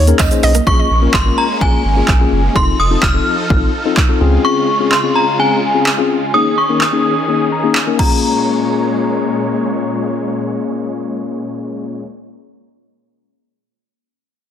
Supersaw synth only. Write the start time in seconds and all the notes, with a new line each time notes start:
0.67 G#3 A#3 C#4
2.56 F3 D#4 A4
4.21 C#3 G#3 F4
6.34 D#3 C#4 G#4
8.00 A#2 G#3 C#5